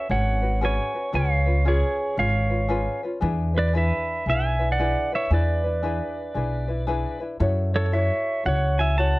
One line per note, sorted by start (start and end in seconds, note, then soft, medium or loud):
0.00 0.10 B4 medium
0.00 0.11 E5 medium
0.09 0.77 G#1 medium
0.09 0.43 C#4 medium
0.09 0.42 F#4 medium
0.09 0.43 G#4 medium
0.09 0.41 B4 medium
0.09 0.59 C#5 medium
0.09 0.64 F#5 loud
0.42 0.61 C#4 soft
0.42 0.61 F#4 soft
0.42 0.61 B4 medium
0.61 0.95 C#4 medium
0.61 0.94 F#4 medium
0.61 0.95 G#4 medium
0.61 0.93 B4 medium
0.61 1.17 G#5 medium
0.65 1.12 C#5 medium
0.95 1.12 C#4 soft
0.95 1.13 F#4 soft
0.95 1.13 B4 soft
1.13 1.81 C#2 loud
1.13 1.47 C#4 medium
1.13 1.46 F4 medium
1.13 1.47 G#4 medium
1.13 1.45 B4 medium
1.13 1.64 C#5 medium
1.13 1.68 F5 loud
1.46 1.64 C#4 soft
1.46 1.64 F4 soft
1.46 1.65 B4 medium
1.65 2.16 C#4 medium
1.65 2.17 F4 medium
1.65 2.16 G#4 medium
1.65 2.18 B4 medium
1.65 2.19 C#5 medium
1.69 2.16 G#4 medium
2.16 2.86 G#1 medium
2.16 2.50 C#4 medium
2.16 2.49 F4 soft
2.16 2.51 G#4 medium
2.16 2.48 B4 medium
2.16 3.00 C#5 medium
2.16 3.00 F5 medium
2.49 2.67 C#4 soft
2.49 2.68 F4 soft
2.49 2.68 B4 soft
2.68 3.03 C#4 medium
2.68 3.03 F4 loud
2.68 3.03 G#4 medium
2.68 3.02 B4 medium
3.03 3.21 C#4 soft
3.03 3.22 F4 medium
3.03 3.21 B4 soft
3.21 3.90 E2 loud
3.21 3.55 D4 loud
3.21 3.53 E4 medium
3.21 3.55 G#4 medium
3.21 3.53 B4 medium
3.54 3.73 D4 soft
3.54 3.73 E4 soft
3.54 3.74 B4 soft
3.54 3.74 B4 medium
3.59 3.76 D5 medium
3.73 4.26 D4 medium
3.73 4.28 E4 medium
3.73 4.25 G#4 medium
3.73 4.27 B4 medium
3.73 4.24 B4 medium
3.77 4.28 E5 medium
4.26 4.94 B1 medium
4.26 4.60 D4 medium
4.26 4.59 E4 medium
4.26 4.60 G#4 medium
4.26 4.58 B4 medium
4.26 4.68 E5 medium
4.26 4.72 G#5 loud
4.59 4.78 D4 soft
4.59 4.79 E4 soft
4.59 4.79 B4 soft
4.72 5.11 D5 medium
4.72 5.15 F#5 loud
4.79 5.12 D4 medium
4.79 5.12 E4 medium
4.79 5.12 G#4 medium
4.79 5.11 B4 medium
5.12 5.30 D4 soft
5.12 5.31 E4 soft
5.12 5.30 B4 medium
5.12 5.32 C#5 medium
5.12 5.33 E5 medium
5.30 5.99 E2 medium
5.30 5.65 D4 medium
5.30 5.64 E4 medium
5.30 5.64 G#4 medium
5.30 5.63 B4 medium
5.30 7.19 B4 medium
5.30 7.19 D5 medium
5.64 5.82 D4 soft
5.64 5.82 E4 soft
5.64 5.82 B4 medium
5.83 6.34 D4 medium
5.83 6.36 E4 medium
5.83 6.33 G#4 medium
5.83 6.35 B4 medium
6.34 7.04 B1 medium
6.34 6.68 D4 medium
6.34 6.68 E4 medium
6.34 6.69 G#4 medium
6.34 6.67 B4 medium
6.68 6.86 D4 soft
6.68 6.87 E4 soft
6.68 6.87 B4 soft
6.87 7.21 D4 medium
6.87 7.20 E4 medium
6.87 7.21 G#4 medium
6.87 7.19 B4 loud
7.20 7.40 D4 soft
7.20 7.39 E4 medium
7.20 7.39 B4 medium
7.40 8.09 F#2 loud
7.40 7.74 E4 medium
7.40 7.73 F#4 medium
7.40 7.74 A4 medium
7.40 7.72 C#5 medium
7.73 7.91 E4 soft
7.73 7.92 F#4 soft
7.73 7.93 A4 medium
7.73 7.92 C#5 medium
7.73 7.93 C#5 medium
7.92 8.44 E4 medium
7.92 8.45 F#4 medium
7.92 8.43 A4 medium
7.92 8.44 C#5 medium
7.92 8.43 C#5 medium
7.92 8.46 E5 medium
8.43 9.14 C#2 medium
8.43 8.78 E4 medium
8.43 8.77 F#4 medium
8.43 8.78 A4 soft
8.43 8.77 C#5 medium
8.43 8.80 F#5 loud
8.48 8.78 C#5 medium
8.78 8.97 E4 soft
8.78 8.97 F#4 soft
8.78 8.98 C#5 soft
8.78 8.98 E5 medium
8.78 8.99 G#5 medium
8.97 9.19 E4 medium
8.97 9.19 F#4 medium
8.97 9.19 A4 medium
8.97 9.19 C#5 loud
8.97 9.19 F#5 medium
8.97 9.19 A5 loud